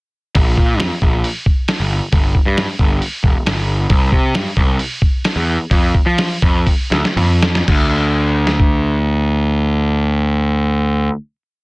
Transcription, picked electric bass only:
0, 0, Header, 1, 2, 480
1, 0, Start_track
1, 0, Tempo, 444444
1, 383, Time_signature, 4, 2, 24, 8
1, 5182, Tempo, 462250
1, 6622, Tempo, 497925
1, 8062, Tempo, 523104
1, 11690, End_track
2, 0, Start_track
2, 0, Title_t, "Picked electric bass"
2, 0, Program_c, 0, 34
2, 383, Note_on_c, 0, 34, 83
2, 594, Note_off_c, 0, 34, 0
2, 624, Note_on_c, 0, 46, 73
2, 860, Note_off_c, 0, 46, 0
2, 860, Note_on_c, 0, 41, 82
2, 967, Note_off_c, 0, 41, 0
2, 1102, Note_on_c, 0, 34, 74
2, 1314, Note_off_c, 0, 34, 0
2, 1942, Note_on_c, 0, 31, 80
2, 2154, Note_off_c, 0, 31, 0
2, 2296, Note_on_c, 0, 31, 81
2, 2510, Note_off_c, 0, 31, 0
2, 2660, Note_on_c, 0, 43, 79
2, 2872, Note_off_c, 0, 43, 0
2, 3018, Note_on_c, 0, 31, 75
2, 3231, Note_off_c, 0, 31, 0
2, 3496, Note_on_c, 0, 28, 90
2, 3604, Note_off_c, 0, 28, 0
2, 3742, Note_on_c, 0, 31, 79
2, 4162, Note_off_c, 0, 31, 0
2, 4213, Note_on_c, 0, 36, 80
2, 4427, Note_off_c, 0, 36, 0
2, 4450, Note_on_c, 0, 48, 80
2, 4706, Note_off_c, 0, 48, 0
2, 4706, Note_on_c, 0, 43, 87
2, 4809, Note_off_c, 0, 43, 0
2, 4933, Note_on_c, 0, 36, 69
2, 5150, Note_off_c, 0, 36, 0
2, 5763, Note_on_c, 0, 40, 87
2, 5979, Note_off_c, 0, 40, 0
2, 6126, Note_on_c, 0, 41, 91
2, 6344, Note_off_c, 0, 41, 0
2, 6492, Note_on_c, 0, 53, 78
2, 6707, Note_off_c, 0, 53, 0
2, 6852, Note_on_c, 0, 41, 74
2, 7060, Note_off_c, 0, 41, 0
2, 7323, Note_on_c, 0, 38, 87
2, 7431, Note_off_c, 0, 38, 0
2, 7564, Note_on_c, 0, 41, 75
2, 8000, Note_off_c, 0, 41, 0
2, 8066, Note_on_c, 0, 38, 85
2, 11184, Note_off_c, 0, 38, 0
2, 11690, End_track
0, 0, End_of_file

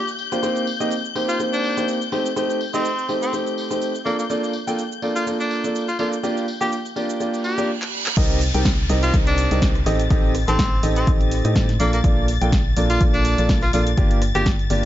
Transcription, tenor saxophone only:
0, 0, Header, 1, 2, 480
1, 0, Start_track
1, 0, Tempo, 483871
1, 425, Time_signature, 4, 2, 24, 8
1, 14733, End_track
2, 0, Start_track
2, 0, Title_t, "Tenor saxophone"
2, 0, Program_c, 0, 66
2, 1276, Note_on_c, 0, 65, 87
2, 1391, Note_off_c, 0, 65, 0
2, 1517, Note_on_c, 0, 62, 88
2, 1865, Note_off_c, 0, 62, 0
2, 2717, Note_on_c, 0, 60, 96
2, 3064, Note_off_c, 0, 60, 0
2, 3196, Note_on_c, 0, 60, 88
2, 3311, Note_off_c, 0, 60, 0
2, 4023, Note_on_c, 0, 58, 90
2, 4108, Note_off_c, 0, 58, 0
2, 4156, Note_on_c, 0, 58, 74
2, 4225, Note_off_c, 0, 58, 0
2, 5116, Note_on_c, 0, 65, 91
2, 5231, Note_off_c, 0, 65, 0
2, 5357, Note_on_c, 0, 62, 91
2, 5704, Note_off_c, 0, 62, 0
2, 5836, Note_on_c, 0, 65, 88
2, 5905, Note_off_c, 0, 65, 0
2, 5945, Note_on_c, 0, 65, 77
2, 6029, Note_off_c, 0, 65, 0
2, 6556, Note_on_c, 0, 67, 91
2, 6671, Note_off_c, 0, 67, 0
2, 7384, Note_on_c, 0, 67, 81
2, 7624, Note_off_c, 0, 67, 0
2, 8956, Note_on_c, 0, 65, 92
2, 9071, Note_off_c, 0, 65, 0
2, 9196, Note_on_c, 0, 62, 90
2, 9544, Note_off_c, 0, 62, 0
2, 10396, Note_on_c, 0, 60, 97
2, 10744, Note_off_c, 0, 60, 0
2, 10876, Note_on_c, 0, 60, 94
2, 10991, Note_off_c, 0, 60, 0
2, 11704, Note_on_c, 0, 58, 89
2, 11789, Note_off_c, 0, 58, 0
2, 11836, Note_on_c, 0, 58, 78
2, 11905, Note_off_c, 0, 58, 0
2, 12796, Note_on_c, 0, 65, 98
2, 12911, Note_off_c, 0, 65, 0
2, 13036, Note_on_c, 0, 62, 97
2, 13384, Note_off_c, 0, 62, 0
2, 13516, Note_on_c, 0, 65, 95
2, 13585, Note_off_c, 0, 65, 0
2, 13624, Note_on_c, 0, 65, 82
2, 13709, Note_off_c, 0, 65, 0
2, 14235, Note_on_c, 0, 67, 98
2, 14350, Note_off_c, 0, 67, 0
2, 14733, End_track
0, 0, End_of_file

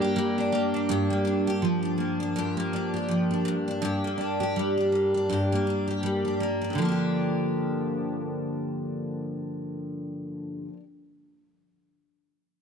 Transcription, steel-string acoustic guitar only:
0, 0, Header, 1, 2, 480
1, 0, Start_track
1, 0, Key_signature, -2, "minor"
1, 0, Tempo, 733496
1, 585, Time_signature, 4, 2, 24, 8
1, 8256, End_track
2, 0, Start_track
2, 0, Title_t, "Steel-string acoustic guitar"
2, 0, Program_c, 0, 25
2, 0, Note_on_c, 0, 43, 75
2, 0, Note_on_c, 0, 55, 65
2, 0, Note_on_c, 0, 58, 49
2, 0, Note_on_c, 0, 62, 49
2, 13, Note_on_c, 0, 67, 55
2, 102, Note_off_c, 0, 55, 0
2, 104, Note_on_c, 0, 55, 60
2, 245, Note_off_c, 0, 62, 0
2, 248, Note_on_c, 0, 62, 53
2, 340, Note_off_c, 0, 58, 0
2, 343, Note_on_c, 0, 58, 54
2, 481, Note_off_c, 0, 62, 0
2, 484, Note_on_c, 0, 62, 46
2, 574, Note_off_c, 0, 43, 0
2, 582, Note_on_c, 0, 43, 75
2, 585, Note_off_c, 0, 67, 0
2, 587, Note_on_c, 0, 67, 59
2, 719, Note_off_c, 0, 58, 0
2, 722, Note_on_c, 0, 58, 50
2, 814, Note_off_c, 0, 62, 0
2, 816, Note_on_c, 0, 62, 55
2, 961, Note_off_c, 0, 67, 0
2, 964, Note_on_c, 0, 67, 59
2, 1058, Note_off_c, 0, 55, 0
2, 1061, Note_on_c, 0, 53, 55
2, 1192, Note_off_c, 0, 62, 0
2, 1195, Note_on_c, 0, 62, 55
2, 1291, Note_off_c, 0, 58, 0
2, 1294, Note_on_c, 0, 58, 49
2, 1437, Note_off_c, 0, 62, 0
2, 1440, Note_on_c, 0, 62, 54
2, 1537, Note_off_c, 0, 43, 0
2, 1543, Note_on_c, 0, 43, 66
2, 1546, Note_off_c, 0, 67, 0
2, 1549, Note_on_c, 0, 67, 49
2, 1679, Note_off_c, 0, 58, 0
2, 1682, Note_on_c, 0, 58, 51
2, 1785, Note_off_c, 0, 62, 0
2, 1787, Note_on_c, 0, 62, 51
2, 1919, Note_off_c, 0, 67, 0
2, 1922, Note_on_c, 0, 67, 54
2, 2011, Note_off_c, 0, 53, 0
2, 2019, Note_on_c, 0, 53, 54
2, 2161, Note_off_c, 0, 62, 0
2, 2164, Note_on_c, 0, 62, 50
2, 2250, Note_off_c, 0, 43, 0
2, 2258, Note_on_c, 0, 43, 67
2, 2318, Note_off_c, 0, 53, 0
2, 2404, Note_off_c, 0, 62, 0
2, 2406, Note_on_c, 0, 62, 49
2, 2490, Note_off_c, 0, 43, 0
2, 2498, Note_on_c, 0, 43, 71
2, 2500, Note_off_c, 0, 67, 0
2, 2502, Note_on_c, 0, 67, 58
2, 2643, Note_off_c, 0, 58, 0
2, 2645, Note_on_c, 0, 58, 43
2, 2731, Note_off_c, 0, 62, 0
2, 2733, Note_on_c, 0, 62, 54
2, 2878, Note_off_c, 0, 67, 0
2, 2880, Note_on_c, 0, 67, 57
2, 2985, Note_on_c, 0, 55, 58
2, 3122, Note_off_c, 0, 62, 0
2, 3125, Note_on_c, 0, 62, 46
2, 3218, Note_off_c, 0, 58, 0
2, 3221, Note_on_c, 0, 58, 47
2, 3363, Note_off_c, 0, 62, 0
2, 3366, Note_on_c, 0, 62, 48
2, 3457, Note_off_c, 0, 43, 0
2, 3465, Note_on_c, 0, 43, 62
2, 3469, Note_off_c, 0, 67, 0
2, 3472, Note_on_c, 0, 67, 53
2, 3612, Note_off_c, 0, 58, 0
2, 3615, Note_on_c, 0, 58, 48
2, 3707, Note_off_c, 0, 62, 0
2, 3710, Note_on_c, 0, 62, 42
2, 3842, Note_off_c, 0, 67, 0
2, 3845, Note_on_c, 0, 67, 52
2, 3943, Note_off_c, 0, 55, 0
2, 3945, Note_on_c, 0, 55, 51
2, 4086, Note_off_c, 0, 62, 0
2, 4088, Note_on_c, 0, 62, 48
2, 4188, Note_off_c, 0, 58, 0
2, 4190, Note_on_c, 0, 58, 48
2, 4326, Note_off_c, 0, 62, 0
2, 4329, Note_on_c, 0, 62, 46
2, 4377, Note_off_c, 0, 43, 0
2, 4385, Note_on_c, 0, 43, 58
2, 4418, Note_on_c, 0, 50, 64
2, 4439, Note_off_c, 0, 55, 0
2, 4442, Note_on_c, 0, 53, 59
2, 4462, Note_off_c, 0, 58, 0
2, 4464, Note_on_c, 0, 58, 67
2, 4484, Note_off_c, 0, 62, 0
2, 4486, Note_on_c, 0, 62, 74
2, 4505, Note_off_c, 0, 67, 0
2, 4507, Note_on_c, 0, 67, 70
2, 6965, Note_off_c, 0, 43, 0
2, 6998, Note_off_c, 0, 50, 0
2, 7021, Note_off_c, 0, 53, 0
2, 7044, Note_off_c, 0, 58, 0
2, 7066, Note_off_c, 0, 62, 0
2, 7087, Note_off_c, 0, 67, 0
2, 8256, End_track
0, 0, End_of_file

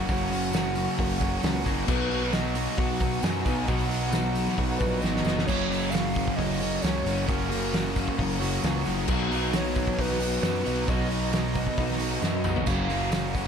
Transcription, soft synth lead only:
0, 0, Header, 1, 2, 480
1, 0, Start_track
1, 0, Key_signature, 6, "major"
1, 0, Tempo, 449775
1, 81, Time_signature, 4, 2, 24, 8
1, 14382, End_track
2, 0, Start_track
2, 0, Title_t, "Soft synth lead"
2, 0, Program_c, 0, 80
2, 83, Note_on_c, 0, 78, 92
2, 305, Note_off_c, 0, 78, 0
2, 326, Note_on_c, 0, 78, 99
2, 1001, Note_off_c, 0, 78, 0
2, 1052, Note_on_c, 0, 78, 87
2, 1724, Note_off_c, 0, 78, 0
2, 2018, Note_on_c, 0, 71, 93
2, 2486, Note_on_c, 0, 75, 99
2, 2502, Note_off_c, 0, 71, 0
2, 2966, Note_on_c, 0, 78, 115
2, 2982, Note_off_c, 0, 75, 0
2, 3449, Note_on_c, 0, 80, 111
2, 3465, Note_off_c, 0, 78, 0
2, 3925, Note_on_c, 0, 78, 112
2, 3941, Note_off_c, 0, 80, 0
2, 5101, Note_off_c, 0, 78, 0
2, 5108, Note_on_c, 0, 71, 79
2, 5340, Note_off_c, 0, 71, 0
2, 5352, Note_on_c, 0, 75, 95
2, 5831, Note_on_c, 0, 73, 105
2, 5847, Note_off_c, 0, 75, 0
2, 6297, Note_on_c, 0, 77, 111
2, 6313, Note_off_c, 0, 73, 0
2, 6786, Note_on_c, 0, 75, 108
2, 6802, Note_off_c, 0, 77, 0
2, 7276, Note_on_c, 0, 73, 94
2, 7292, Note_off_c, 0, 75, 0
2, 7749, Note_off_c, 0, 73, 0
2, 7755, Note_on_c, 0, 70, 93
2, 8680, Note_off_c, 0, 70, 0
2, 10189, Note_on_c, 0, 73, 93
2, 10676, Note_on_c, 0, 71, 109
2, 10692, Note_off_c, 0, 73, 0
2, 11617, Note_on_c, 0, 75, 112
2, 11633, Note_off_c, 0, 71, 0
2, 13026, Note_off_c, 0, 75, 0
2, 13032, Note_on_c, 0, 75, 94
2, 13519, Note_on_c, 0, 77, 113
2, 13535, Note_off_c, 0, 75, 0
2, 14239, Note_on_c, 0, 78, 104
2, 14255, Note_off_c, 0, 77, 0
2, 14382, Note_off_c, 0, 78, 0
2, 14382, End_track
0, 0, End_of_file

